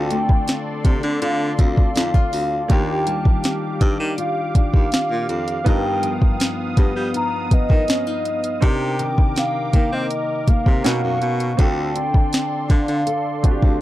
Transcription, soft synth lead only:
0, 0, Header, 1, 2, 480
1, 0, Start_track
1, 0, Tempo, 740741
1, 1749, Time_signature, 4, 2, 24, 8
1, 8951, End_track
2, 0, Start_track
2, 0, Title_t, "Soft synth lead"
2, 0, Program_c, 0, 80
2, 0, Note_on_c, 0, 79, 117
2, 530, Note_off_c, 0, 79, 0
2, 800, Note_on_c, 0, 77, 95
2, 1018, Note_off_c, 0, 77, 0
2, 1040, Note_on_c, 0, 77, 106
2, 1761, Note_on_c, 0, 79, 112
2, 1771, Note_off_c, 0, 77, 0
2, 2475, Note_off_c, 0, 79, 0
2, 2721, Note_on_c, 0, 77, 97
2, 2939, Note_off_c, 0, 77, 0
2, 2959, Note_on_c, 0, 77, 99
2, 3679, Note_on_c, 0, 79, 117
2, 3689, Note_off_c, 0, 77, 0
2, 4394, Note_off_c, 0, 79, 0
2, 4641, Note_on_c, 0, 82, 117
2, 4881, Note_on_c, 0, 75, 106
2, 4891, Note_off_c, 0, 82, 0
2, 5602, Note_on_c, 0, 79, 112
2, 5612, Note_off_c, 0, 75, 0
2, 6083, Note_on_c, 0, 77, 97
2, 6092, Note_off_c, 0, 79, 0
2, 6442, Note_on_c, 0, 75, 100
2, 6451, Note_off_c, 0, 77, 0
2, 6802, Note_on_c, 0, 77, 97
2, 6812, Note_off_c, 0, 75, 0
2, 7522, Note_on_c, 0, 79, 113
2, 7532, Note_off_c, 0, 77, 0
2, 8235, Note_off_c, 0, 79, 0
2, 8241, Note_on_c, 0, 77, 89
2, 8929, Note_off_c, 0, 77, 0
2, 8951, End_track
0, 0, End_of_file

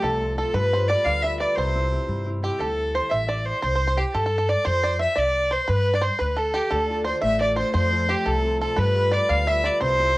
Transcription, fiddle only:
0, 0, Header, 1, 2, 480
1, 0, Start_track
1, 0, Tempo, 343446
1, 752, Time_signature, 6, 3, 24, 8
1, 14225, End_track
2, 0, Start_track
2, 0, Title_t, "Fiddle"
2, 0, Program_c, 0, 110
2, 31, Note_on_c, 0, 69, 92
2, 519, Note_off_c, 0, 69, 0
2, 527, Note_on_c, 0, 69, 96
2, 757, Note_on_c, 0, 71, 116
2, 778, Note_off_c, 0, 69, 0
2, 1230, Note_on_c, 0, 74, 98
2, 1251, Note_off_c, 0, 71, 0
2, 1467, Note_on_c, 0, 77, 118
2, 1488, Note_off_c, 0, 74, 0
2, 1712, Note_on_c, 0, 76, 104
2, 1733, Note_off_c, 0, 77, 0
2, 1944, Note_off_c, 0, 76, 0
2, 1953, Note_on_c, 0, 74, 81
2, 2186, Note_on_c, 0, 72, 96
2, 2207, Note_off_c, 0, 74, 0
2, 3163, Note_off_c, 0, 72, 0
2, 3404, Note_on_c, 0, 67, 82
2, 3632, Note_on_c, 0, 69, 96
2, 3653, Note_off_c, 0, 67, 0
2, 4119, Note_on_c, 0, 72, 78
2, 4140, Note_off_c, 0, 69, 0
2, 4337, Note_on_c, 0, 76, 90
2, 4358, Note_off_c, 0, 72, 0
2, 4540, Note_off_c, 0, 76, 0
2, 4540, Note_on_c, 0, 76, 69
2, 4594, Note_on_c, 0, 74, 81
2, 4615, Note_off_c, 0, 76, 0
2, 4828, Note_on_c, 0, 72, 95
2, 4849, Note_off_c, 0, 74, 0
2, 5065, Note_off_c, 0, 72, 0
2, 5072, Note_on_c, 0, 72, 109
2, 5553, Note_on_c, 0, 67, 83
2, 5574, Note_off_c, 0, 72, 0
2, 5799, Note_on_c, 0, 69, 92
2, 5820, Note_off_c, 0, 67, 0
2, 6279, Note_on_c, 0, 74, 97
2, 6300, Note_off_c, 0, 69, 0
2, 6513, Note_on_c, 0, 72, 115
2, 6534, Note_off_c, 0, 74, 0
2, 6997, Note_off_c, 0, 72, 0
2, 7009, Note_on_c, 0, 76, 96
2, 7247, Note_on_c, 0, 74, 104
2, 7268, Note_off_c, 0, 76, 0
2, 7724, Note_on_c, 0, 72, 90
2, 7745, Note_off_c, 0, 74, 0
2, 7957, Note_on_c, 0, 71, 113
2, 7978, Note_off_c, 0, 72, 0
2, 8316, Note_on_c, 0, 74, 81
2, 8337, Note_off_c, 0, 71, 0
2, 8434, Note_on_c, 0, 72, 96
2, 8455, Note_off_c, 0, 74, 0
2, 8664, Note_on_c, 0, 71, 84
2, 8685, Note_off_c, 0, 72, 0
2, 8918, Note_on_c, 0, 69, 88
2, 8938, Note_off_c, 0, 71, 0
2, 9156, Note_on_c, 0, 67, 85
2, 9177, Note_off_c, 0, 69, 0
2, 9371, Note_on_c, 0, 69, 95
2, 9392, Note_off_c, 0, 67, 0
2, 9860, Note_off_c, 0, 69, 0
2, 9869, Note_on_c, 0, 72, 79
2, 10086, Note_off_c, 0, 72, 0
2, 10099, Note_on_c, 0, 76, 105
2, 10337, Note_off_c, 0, 76, 0
2, 10356, Note_on_c, 0, 74, 85
2, 10573, Note_off_c, 0, 74, 0
2, 10585, Note_on_c, 0, 72, 89
2, 10804, Note_off_c, 0, 72, 0
2, 10830, Note_on_c, 0, 72, 108
2, 11313, Note_on_c, 0, 67, 90
2, 11334, Note_off_c, 0, 72, 0
2, 11557, Note_on_c, 0, 69, 100
2, 11578, Note_off_c, 0, 67, 0
2, 12027, Note_off_c, 0, 69, 0
2, 12036, Note_on_c, 0, 69, 93
2, 12283, Note_on_c, 0, 71, 115
2, 12304, Note_off_c, 0, 69, 0
2, 12762, Note_on_c, 0, 74, 100
2, 12783, Note_off_c, 0, 71, 0
2, 12998, Note_on_c, 0, 77, 106
2, 13019, Note_off_c, 0, 74, 0
2, 13254, Note_on_c, 0, 76, 116
2, 13275, Note_off_c, 0, 77, 0
2, 13494, Note_on_c, 0, 74, 101
2, 13515, Note_off_c, 0, 76, 0
2, 13717, Note_off_c, 0, 74, 0
2, 13725, Note_on_c, 0, 72, 127
2, 14225, Note_off_c, 0, 72, 0
2, 14225, End_track
0, 0, End_of_file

